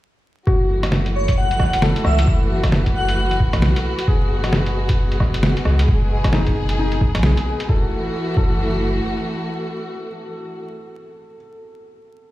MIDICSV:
0, 0, Header, 1, 7, 480
1, 0, Start_track
1, 0, Tempo, 451128
1, 501, Time_signature, 4, 2, 24, 8
1, 13103, End_track
2, 0, Start_track
2, 0, Title_t, "Digital synth lead"
2, 0, Program_c, 0, 84
2, 1230, Note_on_c, 0, 73, 93
2, 1447, Note_off_c, 0, 73, 0
2, 1466, Note_on_c, 0, 78, 95
2, 1943, Note_off_c, 0, 78, 0
2, 2186, Note_on_c, 0, 76, 92
2, 2438, Note_off_c, 0, 76, 0
2, 3138, Note_on_c, 0, 78, 95
2, 3527, Note_off_c, 0, 78, 0
2, 13103, End_track
3, 0, Start_track
3, 0, Title_t, "Synth texture"
3, 0, Program_c, 1, 99
3, 492, Note_on_c, 1, 71, 81
3, 8188, Note_off_c, 1, 71, 0
3, 13103, End_track
4, 0, Start_track
4, 0, Title_t, "Felt piano"
4, 0, Program_c, 2, 0
4, 498, Note_on_c, 2, 66, 68
4, 717, Control_c, 2, 64, 127
4, 1145, Note_off_c, 2, 66, 0
4, 1938, Note_on_c, 2, 69, 60
4, 2585, Note_off_c, 2, 69, 0
4, 4338, Note_on_c, 2, 68, 68
4, 4354, Control_c, 2, 64, 0
4, 4511, Control_c, 2, 64, 127
4, 4985, Note_off_c, 2, 68, 0
4, 6741, Note_on_c, 2, 63, 69
4, 7208, Note_off_c, 2, 63, 0
4, 7224, Note_on_c, 2, 63, 59
4, 7700, Note_on_c, 2, 68, 55
4, 7868, Note_off_c, 2, 63, 0
4, 8182, Note_on_c, 2, 69, 59
4, 8196, Control_c, 2, 64, 0
4, 8336, Note_off_c, 2, 69, 0
4, 8346, Note_off_c, 2, 68, 0
4, 8354, Control_c, 2, 64, 127
4, 8906, Note_on_c, 2, 69, 60
4, 12068, Note_off_c, 2, 69, 0
4, 13103, End_track
5, 0, Start_track
5, 0, Title_t, "String section"
5, 0, Program_c, 3, 48
5, 496, Note_on_c, 3, 52, 76
5, 496, Note_on_c, 3, 57, 72
5, 496, Note_on_c, 3, 66, 86
5, 4300, Note_off_c, 3, 52, 0
5, 4300, Note_off_c, 3, 57, 0
5, 4335, Note_on_c, 3, 56, 76
5, 4338, Note_on_c, 3, 47, 81
5, 6216, Note_off_c, 3, 66, 0
5, 6262, Note_on_c, 3, 68, 88
5, 8140, Note_off_c, 3, 56, 0
5, 8141, Note_off_c, 3, 47, 0
5, 8162, Note_off_c, 3, 68, 0
5, 8178, Note_on_c, 3, 52, 80
5, 8181, Note_on_c, 3, 66, 90
5, 8182, Note_on_c, 3, 57, 75
5, 11341, Note_off_c, 3, 52, 0
5, 11343, Note_off_c, 3, 66, 0
5, 11345, Note_off_c, 3, 57, 0
5, 13103, End_track
6, 0, Start_track
6, 0, Title_t, "Sub bass"
6, 0, Program_c, 4, 38
6, 502, Note_on_c, 4, 30, 95
6, 2070, Note_off_c, 4, 30, 0
6, 2186, Note_on_c, 4, 37, 95
6, 2408, Note_off_c, 4, 37, 0
6, 2421, Note_on_c, 4, 30, 96
6, 3369, Note_off_c, 4, 30, 0
6, 3380, Note_on_c, 4, 30, 92
6, 3765, Note_on_c, 4, 35, 98
6, 3781, Note_off_c, 4, 30, 0
6, 3983, Note_off_c, 4, 35, 0
6, 4340, Note_on_c, 4, 30, 94
6, 5909, Note_off_c, 4, 30, 0
6, 6021, Note_on_c, 4, 37, 98
6, 6246, Note_off_c, 4, 37, 0
6, 6262, Note_on_c, 4, 30, 94
6, 7210, Note_off_c, 4, 30, 0
6, 7220, Note_on_c, 4, 30, 90
6, 7611, Note_on_c, 4, 35, 99
6, 7627, Note_off_c, 4, 30, 0
6, 7826, Note_off_c, 4, 35, 0
6, 8183, Note_on_c, 4, 30, 96
6, 8336, Note_off_c, 4, 30, 0
6, 8904, Note_on_c, 4, 30, 93
6, 9580, Note_off_c, 4, 30, 0
6, 13103, End_track
7, 0, Start_track
7, 0, Title_t, "Drums"
7, 502, Note_on_c, 9, 36, 107
7, 608, Note_off_c, 9, 36, 0
7, 885, Note_on_c, 9, 37, 59
7, 885, Note_on_c, 9, 42, 54
7, 977, Note_on_c, 9, 38, 96
7, 992, Note_off_c, 9, 37, 0
7, 992, Note_off_c, 9, 42, 0
7, 1084, Note_off_c, 9, 38, 0
7, 1128, Note_on_c, 9, 42, 30
7, 1234, Note_off_c, 9, 42, 0
7, 1365, Note_on_c, 9, 42, 54
7, 1369, Note_on_c, 9, 36, 95
7, 1471, Note_off_c, 9, 42, 0
7, 1476, Note_off_c, 9, 36, 0
7, 1607, Note_on_c, 9, 42, 31
7, 1698, Note_on_c, 9, 37, 51
7, 1702, Note_on_c, 9, 36, 94
7, 1713, Note_off_c, 9, 42, 0
7, 1804, Note_off_c, 9, 37, 0
7, 1808, Note_off_c, 9, 36, 0
7, 1844, Note_on_c, 9, 42, 54
7, 1938, Note_on_c, 9, 38, 101
7, 1951, Note_off_c, 9, 42, 0
7, 2044, Note_off_c, 9, 38, 0
7, 2087, Note_on_c, 9, 42, 43
7, 2177, Note_on_c, 9, 37, 61
7, 2193, Note_off_c, 9, 42, 0
7, 2283, Note_off_c, 9, 37, 0
7, 2326, Note_on_c, 9, 42, 54
7, 2420, Note_on_c, 9, 36, 114
7, 2432, Note_off_c, 9, 42, 0
7, 2526, Note_off_c, 9, 36, 0
7, 2804, Note_on_c, 9, 37, 59
7, 2804, Note_on_c, 9, 42, 55
7, 2807, Note_on_c, 9, 36, 98
7, 2897, Note_on_c, 9, 38, 100
7, 2910, Note_off_c, 9, 37, 0
7, 2910, Note_off_c, 9, 42, 0
7, 2914, Note_off_c, 9, 36, 0
7, 3003, Note_off_c, 9, 38, 0
7, 3046, Note_on_c, 9, 36, 58
7, 3047, Note_on_c, 9, 42, 31
7, 3152, Note_off_c, 9, 36, 0
7, 3153, Note_off_c, 9, 42, 0
7, 3283, Note_on_c, 9, 42, 57
7, 3389, Note_off_c, 9, 42, 0
7, 3523, Note_on_c, 9, 42, 31
7, 3618, Note_on_c, 9, 36, 102
7, 3630, Note_off_c, 9, 42, 0
7, 3725, Note_off_c, 9, 36, 0
7, 3759, Note_on_c, 9, 37, 60
7, 3759, Note_on_c, 9, 42, 55
7, 3854, Note_on_c, 9, 38, 103
7, 3865, Note_off_c, 9, 37, 0
7, 3865, Note_off_c, 9, 42, 0
7, 3961, Note_off_c, 9, 38, 0
7, 4004, Note_on_c, 9, 42, 45
7, 4110, Note_off_c, 9, 42, 0
7, 4241, Note_on_c, 9, 42, 56
7, 4339, Note_on_c, 9, 36, 117
7, 4347, Note_off_c, 9, 42, 0
7, 4445, Note_off_c, 9, 36, 0
7, 4722, Note_on_c, 9, 37, 57
7, 4722, Note_on_c, 9, 42, 55
7, 4816, Note_on_c, 9, 38, 105
7, 4828, Note_off_c, 9, 37, 0
7, 4828, Note_off_c, 9, 42, 0
7, 4922, Note_off_c, 9, 38, 0
7, 4963, Note_on_c, 9, 42, 31
7, 5069, Note_off_c, 9, 42, 0
7, 5202, Note_on_c, 9, 42, 56
7, 5207, Note_on_c, 9, 36, 104
7, 5309, Note_off_c, 9, 42, 0
7, 5313, Note_off_c, 9, 36, 0
7, 5445, Note_on_c, 9, 42, 31
7, 5535, Note_on_c, 9, 37, 49
7, 5539, Note_on_c, 9, 36, 103
7, 5551, Note_off_c, 9, 42, 0
7, 5641, Note_off_c, 9, 37, 0
7, 5646, Note_off_c, 9, 36, 0
7, 5684, Note_on_c, 9, 42, 55
7, 5776, Note_on_c, 9, 38, 107
7, 5790, Note_off_c, 9, 42, 0
7, 5883, Note_off_c, 9, 38, 0
7, 5925, Note_on_c, 9, 42, 44
7, 6015, Note_on_c, 9, 37, 60
7, 6031, Note_off_c, 9, 42, 0
7, 6121, Note_off_c, 9, 37, 0
7, 6162, Note_on_c, 9, 42, 55
7, 6260, Note_on_c, 9, 36, 119
7, 6269, Note_off_c, 9, 42, 0
7, 6367, Note_off_c, 9, 36, 0
7, 6643, Note_on_c, 9, 37, 58
7, 6643, Note_on_c, 9, 42, 53
7, 6647, Note_on_c, 9, 36, 98
7, 6732, Note_on_c, 9, 38, 101
7, 6750, Note_off_c, 9, 37, 0
7, 6750, Note_off_c, 9, 42, 0
7, 6753, Note_off_c, 9, 36, 0
7, 6839, Note_off_c, 9, 38, 0
7, 6880, Note_on_c, 9, 42, 29
7, 6888, Note_on_c, 9, 36, 62
7, 6986, Note_off_c, 9, 42, 0
7, 6994, Note_off_c, 9, 36, 0
7, 7118, Note_on_c, 9, 42, 53
7, 7225, Note_off_c, 9, 42, 0
7, 7361, Note_on_c, 9, 42, 30
7, 7462, Note_on_c, 9, 36, 104
7, 7467, Note_off_c, 9, 42, 0
7, 7568, Note_off_c, 9, 36, 0
7, 7605, Note_on_c, 9, 37, 57
7, 7605, Note_on_c, 9, 42, 55
7, 7693, Note_on_c, 9, 38, 106
7, 7712, Note_off_c, 9, 37, 0
7, 7712, Note_off_c, 9, 42, 0
7, 7799, Note_off_c, 9, 38, 0
7, 7846, Note_on_c, 9, 42, 44
7, 7952, Note_off_c, 9, 42, 0
7, 8086, Note_on_c, 9, 42, 52
7, 8184, Note_on_c, 9, 36, 108
7, 8193, Note_off_c, 9, 42, 0
7, 8290, Note_off_c, 9, 36, 0
7, 8904, Note_on_c, 9, 36, 105
7, 9011, Note_off_c, 9, 36, 0
7, 13103, End_track
0, 0, End_of_file